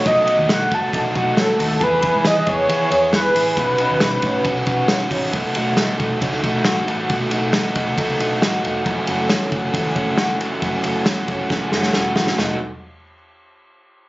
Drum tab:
RD |x-x-x-x-x-x-x-x-|x-x-x-x-x-x-x-x-|x-x-x-x-x-x-x-x-|x-x-x-x-x-x-x-x-|
HH |p-------------o-|p-------------o-|p-------------o-|----------------|
SD |----o-------o---|----o-------o---|----o-------o---|----o-------o---|
FT |----------------|----------------|----------------|----------------|
BD |o-----o-o-o-----|o-o---o---------|o-----o-o-o---o-|o-----o-o-o-----|

RD |x-x-x-x-x-x-x-x-|x-x-x-x-x-x-x-x-|x-x-x-x---------|----------------|
HH |----------------|----------------|----------------|----------------|
SD |----o-------o---|----o-------o---|----o---o-ooo-oo|o---------------|
FT |----------------|----------------|----------------|o---------------|
BD |o-----o-o-------|o-----o-o-o-----|o-----o-o-------|----------------|